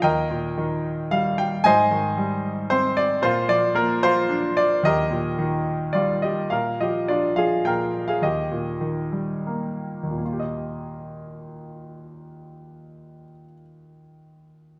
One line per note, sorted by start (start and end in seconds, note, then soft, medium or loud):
0.02 1.61 D#2 medium
0.02 1.09 A#4 medium
0.02 1.09 D#5 medium
0.02 1.08 G5 medium
0.30 1.35 A#2 soft
0.58 1.61 D#3 soft
1.11 1.63 G3 medium
1.11 1.36 F5 medium
1.38 1.63 G5 medium
1.64 3.18 G#2 medium
1.64 2.67 C5 medium
1.64 2.67 D#5 medium
1.64 2.73 G#5 loud
1.91 2.93 D#3 soft
2.17 3.19 G3 soft
2.70 3.21 C4 medium
2.70 2.97 C5 medium
2.97 3.23 D5 medium
3.22 4.79 A#2 medium
3.22 3.99 F4 medium
3.22 3.47 C5 medium
3.48 4.53 F3 medium
3.48 3.74 D5 medium
3.75 4.80 A#3 medium
3.75 4.03 A#4 medium
4.03 4.80 F4 medium
4.03 4.53 C5 loud
4.29 4.82 D4 medium
4.57 4.84 D5 medium
4.83 6.47 D#2 medium
4.83 6.20 G4 medium
4.83 6.20 A#4 medium
4.83 6.20 D#5 medium
5.11 6.19 A#2 soft
5.38 6.48 D#3 soft
5.93 6.49 G3 soft
5.93 6.21 F4 medium
5.93 6.23 D5 medium
6.22 6.50 G4 soft
6.22 6.52 D#5 medium
6.50 7.63 A#2 soft
6.50 6.78 A#4 medium
6.50 6.80 F5 medium
6.80 7.35 F3 soft
6.80 7.07 G4 soft
6.80 7.06 D#5 medium
7.08 8.19 D4 soft
7.08 7.35 F4 soft
7.08 7.37 D5 medium
7.36 8.20 F3 soft
7.36 7.63 G#4 medium
7.36 7.65 F5 medium
7.65 8.20 A#2 soft
7.65 8.06 A#4 medium
7.65 8.09 G5 medium
8.08 8.22 G#4 soft
8.08 8.22 F5 medium
8.22 10.02 D#2 soft
8.22 9.44 G4 soft
8.22 9.43 D#5 medium
8.51 9.79 A#2 soft
8.81 10.17 D#3 soft
9.12 10.18 G3 soft
9.47 10.17 A#3 soft
10.03 13.23 D#2 soft
10.11 13.31 A#2 soft
10.18 13.38 A#3 soft
10.25 13.45 F4 soft
10.33 13.53 G4 soft
10.39 13.60 D#5 soft